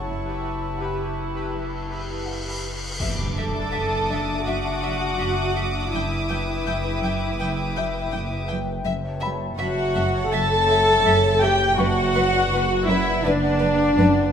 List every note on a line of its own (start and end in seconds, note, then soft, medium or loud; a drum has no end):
0.00 2.96 F#1 medium
0.00 0.77 D4 soft
0.00 0.77 C#5 soft
0.00 2.59 A5 soft
0.00 1.86 C#6 soft
0.07 0.66 F#1 soft
0.07 0.65 F#2 soft
0.07 2.59 E4 soft
0.07 3.01 G4 soft
0.07 3.01 B4 soft
0.07 3.01 B5 soft
0.07 cymbal swell soft
0.80 1.35 G4 soft
0.80 1.35 B4 soft
0.80 1.35 F#5 soft
1.54 2.12 F#2 soft
2.27 2.81 G4 soft
2.27 2.82 B4 soft
2.27 2.81 F#5 soft
3.00 3.65 F#1 soft
3.00 8.82 F#1 medium
3.00 3.22 F#2 soft
3.00 5.89 D4 medium
3.00 3.08 E5 soft
3.00 8.82 E5 medium
3.00 5.89 A5 medium
3.00 8.45 D6 soft
3.00 impact soft
3.36 3.59 F#3 soft
3.36 4.42 A4 medium
3.36 4.43 A4 soft
3.36 3.45 E5 soft
3.36 4.42 A5 soft
3.72 4.38 F#1 soft
3.72 3.96 F#2 soft
3.72 3.80 E5 soft
3.72 8.44 D#6 soft
4.10 4.32 F#2 soft
4.10 4.19 E5 soft
4.10 6.26 E5 soft
4.46 5.11 F#1 soft
4.46 4.69 F#2 soft
4.46 5.93 F#4 medium
4.46 4.54 E5 soft
4.46 5.92 F#5 medium
4.83 5.05 F#3 soft
4.83 4.91 E5 soft
5.19 5.84 F#1 soft
5.19 5.42 F#2 medium
5.19 5.27 E5 soft
5.56 5.79 F#3 soft
5.56 5.64 E5 soft
5.93 6.57 F#1 soft
5.93 6.15 F#2 medium
5.93 8.49 E4 soft
5.93 8.45 E4 soft
5.93 8.86 B4 medium
5.93 8.45 E5 soft
5.93 8.86 G5 medium
5.93 6.02 G5 soft
6.29 6.51 F#3 soft
6.29 6.38 G5 soft
6.66 7.31 F#1 soft
6.66 6.88 F#2 soft
6.66 6.74 G5 soft
7.02 7.24 F#2 medium
7.02 7.12 G5 soft
7.39 8.04 F#1 soft
7.39 7.61 F#2 soft
7.39 7.48 G5 soft
7.75 7.97 F#3 soft
7.75 9.92 E5 soft
7.75 7.84 G5 soft
8.11 8.78 F#1 medium
8.11 8.33 F#2 medium
8.11 8.19 G5 soft
8.48 8.71 F#3 soft
8.48 8.56 G5 soft
8.85 14.32 F#1 medium
8.85 9.50 F#1 medium
8.85 9.07 F#2 medium
8.85 11.78 C#5 medium
8.85 8.93 E5 medium
8.85 11.75 E5 medium
8.85 11.79 A5 medium
9.20 9.44 F#3 soft
9.20 9.28 E5 soft
9.20 11.38 B5 soft
9.58 10.23 F#1 medium
9.58 9.81 F#2 medium
9.58 10.27 F#4 medium
9.58 9.66 E5 medium
9.58 10.28 F#5 medium
9.95 10.17 F#2 medium
9.95 10.03 E5 medium
10.31 10.96 F#1 medium
10.31 10.53 F#2 medium
10.31 11.41 A4 medium
10.31 10.40 E5 medium
10.31 11.41 A5 medium
10.68 10.90 F#3 soft
10.68 10.77 E5 medium
11.04 11.69 F#1 medium
11.04 11.26 F#2 medium
11.04 11.13 E5 medium
11.40 11.63 F#3 medium
11.40 11.78 G4 medium
11.40 11.51 E5 medium
11.40 11.77 G5 medium
11.40 11.79 G5 medium
11.77 12.43 F#1 medium
11.77 12.00 F#2 medium
11.77 12.85 F#4 medium
11.77 14.32 B4 medium
11.77 11.87 B4 medium
11.77 14.32 D5 medium
11.77 14.32 F#5 medium
11.77 12.88 F#5 medium
11.77 13.94 C#6 soft
12.15 12.37 F#3 medium
12.15 12.24 B4 medium
12.50 13.15 F#1 medium
12.50 12.74 F#2 medium
12.50 12.61 B4 medium
12.86 13.10 F#2 medium
12.86 13.23 E4 medium
12.86 13.24 E4 medium
12.86 12.97 B4 medium
12.86 13.24 E5 medium
13.23 13.89 F#1 medium
13.23 13.47 F#2 medium
13.23 14.32 D4 medium
13.23 13.33 B4 medium
13.23 14.32 D5 medium
13.61 13.83 F#3 medium
13.61 13.69 B4 medium
13.98 14.32 F#1 medium
13.98 14.20 F#2 medium
13.98 14.07 B4 medium